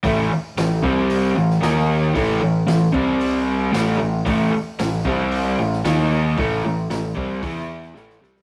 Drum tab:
HH |o---o---o---o---|o---o---o---o---|o---o---o---o---|o---o---o-------|
SD |----o------oo---|----o-------o---|----o------oo---|----o------ooooo|
BD |o-----o---------|o-----o---------|o-----o---------|o-----o-o-------|